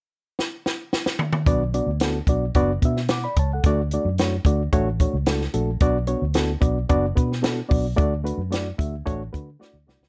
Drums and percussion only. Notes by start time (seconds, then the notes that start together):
0.39 snare
0.66 snare
0.93 snare
1.06 snare
1.19 mid tom
1.33 mid tom
1.46 kick, closed hi-hat
1.74 closed hi-hat
2.00 snare, closed hi-hat
2.27 kick, closed hi-hat
2.54 kick, closed hi-hat
2.82 kick, closed hi-hat
2.96 snare
3.08 snare, closed hi-hat
3.36 kick, closed hi-hat
3.64 kick, closed hi-hat
3.91 closed hi-hat
4.18 snare, closed hi-hat
4.45 kick, closed hi-hat
4.72 kick, closed hi-hat
5.00 kick, closed hi-hat
5.26 snare, closed hi-hat
5.41 snare
5.54 closed hi-hat
5.80 kick, closed hi-hat
6.07 closed hi-hat
6.34 snare, closed hi-hat
6.62 kick, closed hi-hat
6.89 kick, closed hi-hat
7.17 kick, closed hi-hat
7.32 snare
7.44 snare, closed hi-hat
7.71 kick, open hi-hat
7.98 kick, closed hi-hat
8.26 closed hi-hat
8.52 snare, closed hi-hat
8.79 kick, closed hi-hat
9.07 kick, closed hi-hat
9.34 kick, closed hi-hat
9.62 snare
9.89 snare
10.03 snare